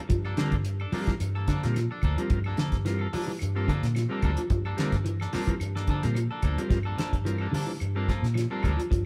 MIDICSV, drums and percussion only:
0, 0, Header, 1, 2, 480
1, 0, Start_track
1, 0, Tempo, 550459
1, 85, Time_signature, 4, 2, 24, 8
1, 7897, End_track
2, 0, Start_track
2, 0, Title_t, "Drums"
2, 85, Note_on_c, 9, 42, 79
2, 89, Note_on_c, 9, 36, 90
2, 172, Note_off_c, 9, 42, 0
2, 176, Note_off_c, 9, 36, 0
2, 215, Note_on_c, 9, 75, 54
2, 302, Note_off_c, 9, 75, 0
2, 324, Note_on_c, 9, 42, 55
2, 332, Note_on_c, 9, 38, 78
2, 411, Note_off_c, 9, 42, 0
2, 419, Note_off_c, 9, 38, 0
2, 450, Note_on_c, 9, 42, 43
2, 455, Note_on_c, 9, 36, 63
2, 538, Note_off_c, 9, 42, 0
2, 542, Note_off_c, 9, 36, 0
2, 564, Note_on_c, 9, 42, 75
2, 651, Note_off_c, 9, 42, 0
2, 696, Note_on_c, 9, 75, 59
2, 783, Note_off_c, 9, 75, 0
2, 806, Note_on_c, 9, 46, 72
2, 893, Note_off_c, 9, 46, 0
2, 932, Note_on_c, 9, 42, 44
2, 938, Note_on_c, 9, 36, 64
2, 940, Note_on_c, 9, 38, 26
2, 1019, Note_off_c, 9, 42, 0
2, 1025, Note_off_c, 9, 36, 0
2, 1027, Note_off_c, 9, 38, 0
2, 1048, Note_on_c, 9, 42, 76
2, 1054, Note_on_c, 9, 75, 54
2, 1135, Note_off_c, 9, 42, 0
2, 1142, Note_off_c, 9, 75, 0
2, 1287, Note_on_c, 9, 42, 52
2, 1290, Note_on_c, 9, 36, 66
2, 1295, Note_on_c, 9, 38, 27
2, 1374, Note_off_c, 9, 42, 0
2, 1378, Note_off_c, 9, 36, 0
2, 1382, Note_off_c, 9, 38, 0
2, 1425, Note_on_c, 9, 42, 46
2, 1433, Note_on_c, 9, 38, 24
2, 1512, Note_off_c, 9, 42, 0
2, 1520, Note_off_c, 9, 38, 0
2, 1521, Note_on_c, 9, 75, 55
2, 1536, Note_on_c, 9, 42, 70
2, 1544, Note_on_c, 9, 38, 27
2, 1608, Note_off_c, 9, 75, 0
2, 1623, Note_off_c, 9, 42, 0
2, 1631, Note_off_c, 9, 38, 0
2, 1759, Note_on_c, 9, 75, 63
2, 1768, Note_on_c, 9, 42, 47
2, 1770, Note_on_c, 9, 36, 68
2, 1846, Note_off_c, 9, 75, 0
2, 1855, Note_off_c, 9, 42, 0
2, 1857, Note_off_c, 9, 36, 0
2, 1902, Note_on_c, 9, 42, 50
2, 1989, Note_off_c, 9, 42, 0
2, 2004, Note_on_c, 9, 42, 74
2, 2009, Note_on_c, 9, 36, 103
2, 2091, Note_off_c, 9, 42, 0
2, 2097, Note_off_c, 9, 36, 0
2, 2129, Note_on_c, 9, 75, 65
2, 2216, Note_off_c, 9, 75, 0
2, 2243, Note_on_c, 9, 42, 51
2, 2251, Note_on_c, 9, 38, 75
2, 2331, Note_off_c, 9, 42, 0
2, 2338, Note_off_c, 9, 38, 0
2, 2371, Note_on_c, 9, 42, 41
2, 2375, Note_on_c, 9, 36, 57
2, 2379, Note_on_c, 9, 38, 22
2, 2459, Note_off_c, 9, 42, 0
2, 2462, Note_off_c, 9, 36, 0
2, 2467, Note_off_c, 9, 38, 0
2, 2492, Note_on_c, 9, 42, 63
2, 2499, Note_on_c, 9, 38, 30
2, 2579, Note_off_c, 9, 42, 0
2, 2587, Note_off_c, 9, 38, 0
2, 2607, Note_on_c, 9, 75, 59
2, 2694, Note_off_c, 9, 75, 0
2, 2731, Note_on_c, 9, 46, 77
2, 2818, Note_off_c, 9, 46, 0
2, 2958, Note_on_c, 9, 75, 59
2, 2979, Note_on_c, 9, 42, 69
2, 3045, Note_off_c, 9, 75, 0
2, 3066, Note_off_c, 9, 42, 0
2, 3213, Note_on_c, 9, 36, 63
2, 3220, Note_on_c, 9, 42, 47
2, 3300, Note_off_c, 9, 36, 0
2, 3307, Note_off_c, 9, 42, 0
2, 3342, Note_on_c, 9, 42, 46
2, 3350, Note_on_c, 9, 38, 27
2, 3429, Note_off_c, 9, 42, 0
2, 3437, Note_off_c, 9, 38, 0
2, 3443, Note_on_c, 9, 75, 60
2, 3457, Note_on_c, 9, 42, 63
2, 3464, Note_on_c, 9, 38, 29
2, 3531, Note_off_c, 9, 75, 0
2, 3544, Note_off_c, 9, 42, 0
2, 3552, Note_off_c, 9, 38, 0
2, 3683, Note_on_c, 9, 42, 47
2, 3687, Note_on_c, 9, 36, 64
2, 3687, Note_on_c, 9, 75, 62
2, 3771, Note_off_c, 9, 42, 0
2, 3774, Note_off_c, 9, 36, 0
2, 3774, Note_off_c, 9, 75, 0
2, 3810, Note_on_c, 9, 42, 54
2, 3897, Note_off_c, 9, 42, 0
2, 3924, Note_on_c, 9, 42, 75
2, 3928, Note_on_c, 9, 36, 97
2, 4011, Note_off_c, 9, 42, 0
2, 4015, Note_off_c, 9, 36, 0
2, 4056, Note_on_c, 9, 75, 54
2, 4143, Note_off_c, 9, 75, 0
2, 4167, Note_on_c, 9, 42, 62
2, 4175, Note_on_c, 9, 38, 69
2, 4254, Note_off_c, 9, 42, 0
2, 4262, Note_off_c, 9, 38, 0
2, 4293, Note_on_c, 9, 42, 45
2, 4296, Note_on_c, 9, 36, 55
2, 4301, Note_on_c, 9, 38, 23
2, 4380, Note_off_c, 9, 42, 0
2, 4383, Note_off_c, 9, 36, 0
2, 4388, Note_off_c, 9, 38, 0
2, 4410, Note_on_c, 9, 42, 75
2, 4497, Note_off_c, 9, 42, 0
2, 4533, Note_on_c, 9, 75, 60
2, 4547, Note_on_c, 9, 38, 23
2, 4620, Note_off_c, 9, 75, 0
2, 4634, Note_off_c, 9, 38, 0
2, 4646, Note_on_c, 9, 46, 71
2, 4653, Note_on_c, 9, 38, 30
2, 4733, Note_off_c, 9, 46, 0
2, 4741, Note_off_c, 9, 38, 0
2, 4776, Note_on_c, 9, 36, 58
2, 4776, Note_on_c, 9, 42, 56
2, 4863, Note_off_c, 9, 36, 0
2, 4863, Note_off_c, 9, 42, 0
2, 4884, Note_on_c, 9, 75, 64
2, 4892, Note_on_c, 9, 42, 70
2, 4971, Note_off_c, 9, 75, 0
2, 4979, Note_off_c, 9, 42, 0
2, 5023, Note_on_c, 9, 38, 28
2, 5110, Note_off_c, 9, 38, 0
2, 5122, Note_on_c, 9, 42, 46
2, 5126, Note_on_c, 9, 36, 70
2, 5209, Note_off_c, 9, 42, 0
2, 5213, Note_off_c, 9, 36, 0
2, 5260, Note_on_c, 9, 42, 51
2, 5268, Note_on_c, 9, 38, 23
2, 5347, Note_off_c, 9, 42, 0
2, 5355, Note_off_c, 9, 38, 0
2, 5363, Note_on_c, 9, 75, 55
2, 5375, Note_on_c, 9, 42, 66
2, 5451, Note_off_c, 9, 75, 0
2, 5462, Note_off_c, 9, 42, 0
2, 5602, Note_on_c, 9, 42, 54
2, 5602, Note_on_c, 9, 75, 56
2, 5607, Note_on_c, 9, 36, 60
2, 5689, Note_off_c, 9, 42, 0
2, 5689, Note_off_c, 9, 75, 0
2, 5694, Note_off_c, 9, 36, 0
2, 5741, Note_on_c, 9, 42, 51
2, 5828, Note_off_c, 9, 42, 0
2, 5847, Note_on_c, 9, 36, 104
2, 5847, Note_on_c, 9, 42, 76
2, 5855, Note_on_c, 9, 38, 31
2, 5934, Note_off_c, 9, 36, 0
2, 5934, Note_off_c, 9, 42, 0
2, 5942, Note_off_c, 9, 38, 0
2, 5957, Note_on_c, 9, 75, 60
2, 6045, Note_off_c, 9, 75, 0
2, 6090, Note_on_c, 9, 42, 50
2, 6098, Note_on_c, 9, 38, 74
2, 6178, Note_off_c, 9, 42, 0
2, 6185, Note_off_c, 9, 38, 0
2, 6217, Note_on_c, 9, 36, 53
2, 6219, Note_on_c, 9, 42, 42
2, 6304, Note_off_c, 9, 36, 0
2, 6307, Note_off_c, 9, 42, 0
2, 6334, Note_on_c, 9, 42, 68
2, 6421, Note_off_c, 9, 42, 0
2, 6439, Note_on_c, 9, 75, 64
2, 6526, Note_off_c, 9, 75, 0
2, 6577, Note_on_c, 9, 46, 66
2, 6665, Note_off_c, 9, 46, 0
2, 6804, Note_on_c, 9, 75, 62
2, 6814, Note_on_c, 9, 42, 61
2, 6891, Note_off_c, 9, 75, 0
2, 6901, Note_off_c, 9, 42, 0
2, 7050, Note_on_c, 9, 36, 64
2, 7057, Note_on_c, 9, 42, 47
2, 7064, Note_on_c, 9, 38, 22
2, 7138, Note_off_c, 9, 36, 0
2, 7144, Note_off_c, 9, 42, 0
2, 7152, Note_off_c, 9, 38, 0
2, 7187, Note_on_c, 9, 42, 43
2, 7195, Note_on_c, 9, 38, 24
2, 7274, Note_off_c, 9, 42, 0
2, 7275, Note_on_c, 9, 75, 63
2, 7282, Note_off_c, 9, 38, 0
2, 7303, Note_on_c, 9, 42, 67
2, 7311, Note_on_c, 9, 38, 27
2, 7362, Note_off_c, 9, 75, 0
2, 7390, Note_off_c, 9, 42, 0
2, 7398, Note_off_c, 9, 38, 0
2, 7524, Note_on_c, 9, 75, 65
2, 7534, Note_on_c, 9, 36, 61
2, 7539, Note_on_c, 9, 42, 49
2, 7611, Note_off_c, 9, 75, 0
2, 7621, Note_off_c, 9, 36, 0
2, 7627, Note_off_c, 9, 42, 0
2, 7670, Note_on_c, 9, 42, 54
2, 7757, Note_off_c, 9, 42, 0
2, 7775, Note_on_c, 9, 36, 101
2, 7783, Note_on_c, 9, 42, 82
2, 7862, Note_off_c, 9, 36, 0
2, 7870, Note_off_c, 9, 42, 0
2, 7897, End_track
0, 0, End_of_file